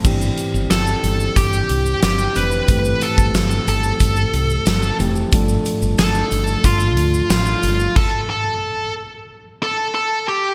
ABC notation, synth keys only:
X:1
M:4/4
L:1/8
Q:1/4=91
K:C
V:1 name="Synth keys"
[E,CDG]6- [E,CDG] [E,CDG] | [E,A,CG]6- [E,A,CG] [E,A,CG] | [F,A,DA]8 | z8 |]